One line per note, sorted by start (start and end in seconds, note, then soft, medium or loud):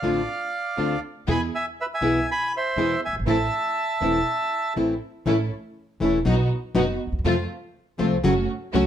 0.00 0.24 A1 soft
0.00 0.20 D3 medium
0.00 0.21 A3 medium
0.00 0.24 C4 soft
0.00 0.21 C4 medium
0.00 0.24 D4 soft
0.00 0.24 F4 soft
0.00 0.21 F4 medium
0.00 1.00 D5 medium
0.00 1.00 F5 medium
0.77 0.99 D2 soft
0.77 0.95 D3 medium
0.77 0.95 A3 medium
0.77 0.98 C4 soft
0.77 0.95 C4 medium
0.77 0.98 D4 soft
0.77 0.98 F4 soft
0.77 0.96 F4 medium
1.27 1.49 E2 medium
1.27 1.37 B2 medium
1.27 1.37 E3 medium
1.27 1.37 G#3 medium
1.27 1.48 B3 medium
1.27 1.37 B3 medium
1.27 1.48 E4 medium
1.27 1.37 E4 medium
1.27 1.48 G#4 medium
1.27 1.41 G#5 medium
1.27 1.41 B5 medium
1.55 1.65 E5 medium
1.55 1.66 G#5 medium
1.81 1.86 B4 medium
1.81 1.85 E5 medium
1.94 2.26 E5 medium
1.94 2.30 G#5 medium
2.01 2.22 B1 soft
2.01 2.18 B2 medium
2.01 2.19 E3 medium
2.01 2.19 G#3 medium
2.01 2.22 B3 soft
2.01 2.19 B3 medium
2.01 2.23 E4 soft
2.01 2.19 E4 medium
2.01 2.22 G#4 medium
2.31 2.52 G#5 medium
2.31 2.54 B5 medium
2.57 3.01 C5 medium
2.57 3.01 E5 medium
2.76 2.97 E2 medium
2.76 2.94 B2 medium
2.76 2.94 E3 medium
2.76 2.94 G#3 medium
2.76 2.97 B3 soft
2.76 2.94 B3 medium
2.76 2.97 E4 soft
2.76 2.94 E4 medium
2.76 2.97 G#4 soft
3.05 3.12 F#1 soft
3.05 3.15 E5 medium
3.05 3.15 G#5 medium
3.13 3.19 G1 soft
3.20 3.26 G#1 medium
3.26 3.47 A1 medium
3.26 3.36 E3 medium
3.26 3.36 A3 medium
3.26 3.47 C4 medium
3.26 3.36 C4 medium
3.26 3.47 E4 medium
3.26 3.36 E4 medium
3.26 3.47 A4 medium
3.26 4.73 E5 medium
3.26 4.73 A5 medium
4.01 4.22 E1 soft
4.01 4.18 E3 medium
4.01 4.18 A3 medium
4.01 4.22 C4 soft
4.01 4.18 C4 medium
4.01 4.22 E4 soft
4.01 4.19 E4 medium
4.01 4.22 A4 medium
4.76 4.97 A1 soft
4.76 4.93 E3 soft
4.76 4.93 A3 medium
4.76 4.97 C4 soft
4.76 4.94 C4 medium
4.76 4.97 E4 soft
4.76 4.94 E4 medium
4.76 4.97 A4 soft
5.26 5.47 A1 medium
5.26 5.35 E3 medium
5.26 5.35 A3 medium
5.26 5.47 C#4 medium
5.26 5.35 C#4 medium
5.26 5.47 E4 medium
5.26 5.36 E4 medium
5.26 5.47 A4 medium
6.00 6.22 E1 medium
6.00 6.18 E3 medium
6.00 6.18 A3 medium
6.00 6.18 C#4 medium
6.00 6.22 C#4 soft
6.00 6.18 E4 medium
6.00 6.22 E4 soft
6.00 6.23 A4 soft
6.25 6.46 B1 medium
6.25 6.34 B2 medium
6.25 6.34 F#3 medium
6.25 6.47 B3 medium
6.25 6.35 B3 medium
6.25 6.35 D#4 medium
6.25 6.47 D#4 medium
6.25 6.35 F#4 medium
6.25 6.47 F#4 medium
6.75 6.96 F#1 medium
6.75 6.84 B2 medium
6.75 6.84 F#3 medium
6.75 6.84 B3 medium
6.75 6.97 B3 medium
6.75 6.84 D#4 medium
6.75 6.96 D#4 medium
6.75 6.85 F#4 medium
6.75 6.97 F#4 medium
7.07 7.12 D2 soft
7.12 7.18 D#2 medium
7.19 7.24 E2 medium
7.24 7.46 F2 medium
7.24 7.34 C3 medium
7.24 7.34 F3 medium
7.24 7.46 A3 medium
7.24 7.34 A3 medium
7.24 7.46 C4 medium
7.24 7.34 C4 medium
7.24 7.46 F4 medium
7.24 7.35 F4 medium
7.98 8.20 C2 medium
7.98 8.16 C3 medium
7.98 8.16 F3 medium
7.98 8.20 A3 medium
7.98 8.16 A3 medium
7.98 8.16 C4 medium
7.98 8.20 C4 soft
7.98 8.20 F4 medium
7.98 8.16 F4 medium
8.24 8.45 F#1 medium
8.24 8.33 C#3 medium
8.24 8.33 F#3 medium
8.24 8.33 A3 medium
8.24 8.45 A3 medium
8.24 8.33 C#4 medium
8.24 8.45 C#4 medium
8.24 8.33 F#4 loud
8.24 8.45 F#4 medium
8.73 8.87 C#2 medium
8.73 8.83 C#3 medium
8.73 8.83 F#3 medium
8.73 8.87 A3 medium
8.73 8.83 A3 medium
8.73 8.87 C#4 medium
8.73 8.83 C#4 medium
8.73 8.87 F#4 medium
8.73 8.84 F#4 medium